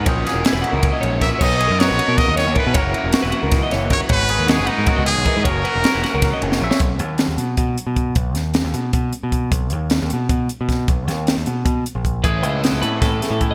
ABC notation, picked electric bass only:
X:1
M:7/8
L:1/16
Q:1/4=155
K:B
V:1 name="Picked electric bass" clef=bass
A,,,2 z E,,, z E,,, z C,,2 z A,,,2 A,,, z | B,,,3 F,,2 A,,, z B,, z D,,2 D,, z B,, | F,,,2 z E,,, z E,,, z C,,2 z F,,,2 =G,,, z | G,,,3 D,,2 F,,, z G,, z C,,2 B,,, z G,, |
F,,,2 z E,,, z E,,, z C,,2 z F,,,2 A,,, z | B,,,2 D,,3 D,, B,,2 B,,2 z B,,3 | B,,,2 D,,3 D,, B,,2 B,,2 z B,,3 | B,,,2 D,,3 D,, B,,2 B,,2 z B,,3 |
B,,,2 D,,3 D,, B,,2 B,,2 z A,,,3 | =A,,,2 C,,3 C,, =A,,2 A,,2 z A,,3 |]